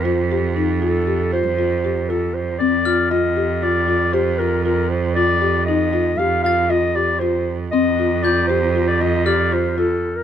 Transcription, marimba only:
X:1
M:5/4
L:1/8
Q:1/4=117
K:Cdor
V:1 name="Marimba"
F G E F G F F G F2 | C F F G F F G F F2 | F G E F G F F G F2 | C F F G F F G F F2 |]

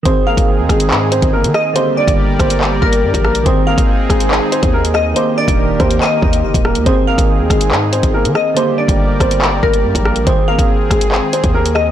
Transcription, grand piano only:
X:1
M:4/4
L:1/8
Q:1/4=141
K:Ablyd
V:1 name="Grand piano"
[Cc] [B,B]2 [A,A]2 [Cc] [B,B] z | [Cc] [Dd]2 [Cc]2 [B,B]2 [B,B] | [Cc] [B,B]2 [A,A]2 [Cc] [B,B] z | [Cc] [Dd]2 [Cc]4 [B,B] |
[Cc] [B,B]2 [A,A]2 [Cc] [B,B] z | [Cc] [Dd]2 [Cc]2 [B,B]2 [B,B] | [Cc] [B,B]2 [A,A]2 [Cc] [B,B] z |]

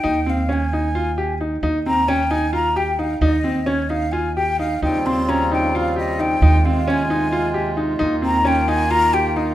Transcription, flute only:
X:1
M:7/8
L:1/8
Q:1/4=132
K:Ebmix
V:1 name="Flute"
g f a4 z | z b g a b g f | e2 d f a g f | g c' b g f e g- |
g f a4 z | z b g a b g f |]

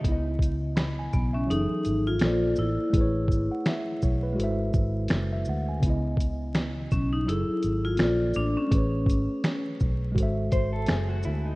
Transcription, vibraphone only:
X:1
M:4/4
L:1/16
Q:"Swing 16ths" 1/4=83
K:C#m
V:1 name="Vibraphone"
z6 B, C D3 ^E3 =E2- | E12- E2 z2 | z6 C D E3 ^E3 =D C- | C4- C z8 z3 |]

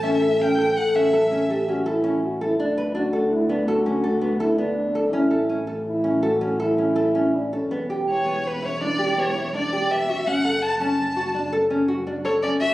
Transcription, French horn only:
X:1
M:7/4
L:1/16
Q:1/4=165
K:Edor
V:1 name="French horn"
A8 A4- A z3 G2 F2 E4 F2 E2 | D4 F4 E2 D2 F8 E2 D6 | E4- E z3 E4 F4 E8 D2 C2 | z24 z4 |
z24 z4 |]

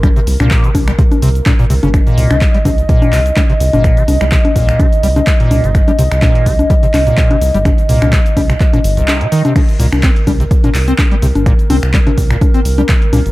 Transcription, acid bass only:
X:1
M:4/4
L:1/16
Q:"Swing 16ths" 1/4=126
K:Cm
V:1 name="Acid bass" clef=bass
G, C, z B,,2 C, z G, C, z C, z B,, B,, C, _D, | z B,,2 C, z G, C, z B,,2 C, z G, C, z B,,- | B,, C, z G, C, z B,,2 C, z G, C, z B,,2 C, | z G, C, z B,,2 C, z G, C, z B,,2 C, z G, |
C, z B,,2 C, z G, C, z B,, z C,,2 C, E, C, | z2 B,, z C z G, C, z B,, z C z G, C, z | B,, z C z G, C, z B,, z C z G, C, z B,, z |]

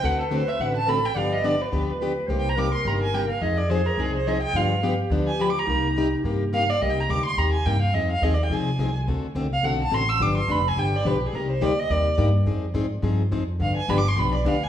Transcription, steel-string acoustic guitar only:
X:1
M:4/4
L:1/8
Q:"Swing" 1/4=212
K:Cm
V:1 name="Steel-string acoustic guitar"
[D,=A,C^F=A] z [D,A,CFA] z [D,A,CFA] z [D,A,CFA] z | [D,F,=B,DG] z [D,F,B,DG] z [D,F,B,DG] z [D,F,B,DG] z | [C,G,B,EG] z [C,G,B,EG] z [C,G,B,EG] z [C,G,B,EG] z | [F,CEA] z [F,CEA] z [F,CEA] z [F,CEA] z |
[D,F,=B,DG] z [D,F,B,DG] z [D,F,B,DG] z [D,F,B,DG] z | [C,G,B,EG] z [C,G,B,EG] z [C,G,B,EG] z [C,G,B,EG] z | [C,G,B,EG] z [C,G,B,EG] z [C,G,B,EG] z [C,G,B,EG] z | [F,CEA] z [F,CEA] z [F,CEA] z [F,CEA] z |
[D,=A,C^F=A] z [D,A,CFA] z [D,A,CFA] z [D,A,CFA] z | [D,F,=B,DG] z [D,F,B,DG] z [D,F,B,DG] z [D,F,B,DG] z | [C,G,B,EG] z [C,G,B,EG] z [C,G,B,EG] z [C,G,B,EG] z | [F,CEA] z [F,CEA] z [F,CEA] z [F,CEA] z |
[D,F,=B,DG] z [D,F,B,DG] z [D,F,B,DG] z [D,F,B,DG] z |]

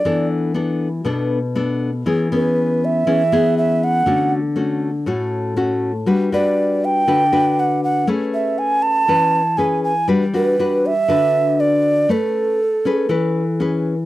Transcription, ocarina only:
X:1
M:4/4
L:1/8
Q:1/4=120
K:A
V:1 name="Ocarina"
d z6 z | z B2 e3 e f- | f z6 z | z d2 =g3 f f |
z e g a3 g g | z B2 e3 d2 | A6 z2 |]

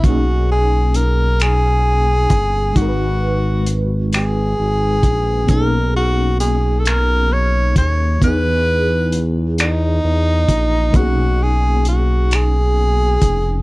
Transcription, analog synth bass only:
X:1
M:6/8
L:1/8
Q:3/8=44
K:B
V:1 name="Analog synth bass" clef=bass
B,,,4- B,,, =G,,, | G,,,4 G,,, A,,, | B,,,4- B,,, D,, | E,,4 E,, A,,, |
B,,,4- B,,, ^E,,, |]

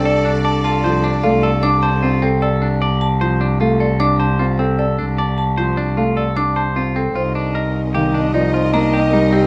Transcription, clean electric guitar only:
X:1
M:6/4
L:1/8
Q:1/4=152
K:Dphr
V:1 name="Clean electric guitar"
A D d F c D F A D c F C | A D d z c D F A D c F C | A D d z c D F A D c F C | F D B z G D E F D G E C |]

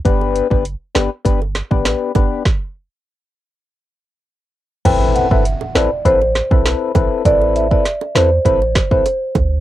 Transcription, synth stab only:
X:1
M:4/4
L:1/16
Q:1/4=100
K:Ador
V:1 name="Synth stab"
[B,DGB]3 [B,DGB] z2 [B,DGB] z [B,DGB] z2 [B,DGB]3 [B,DGB]2 | z16 | [CEAB]3 [CEAB] z2 [CEAB] z [CEAB] z2 [CEAB]3 [CEAB]2 | [CEAB]3 [CEAB] z2 [CEAB] z [CEAB] z2 [CEAB] z4 |]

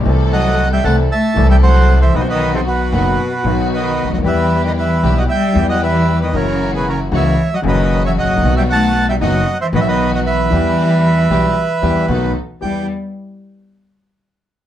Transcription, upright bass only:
X:1
M:4/4
L:1/16
Q:1/4=115
K:Em
V:1 name="Upright bass" clef=bass
C,,4- C,,3/2 z/2 C,,3/2 z2 z/2 C,,4- C,,3/2 z/2 | B,,,4- B,,,3/2 z/2 F,,,3/2 z2 z/2 B,,,4- B,,,/2 ^C,,/2 D,,/2 ^D,,/2 | E,,4- E,,3/2 z/2 B,,,3/2 z2 z/2 E,,4- E,,3/2 z/2 | F,,,4- F,,,3/2 z/2 ^C,,3/2 z2 z/2 F,,,4- F,,,/2 ^G,,,/2 A,,,/2 ^A,,,/2 |
B,,,4- B,,,3/2 z/2 F,,,3/2 z2 z/2 B,,,4- B,,,3/2 z/2 | E,,4- E,,3/2 z/2 B,,,3/2 z2 z/2 E,,3/2 z/2 B,,,3/2 z2 z/2 | E,,2 z12 z2 |]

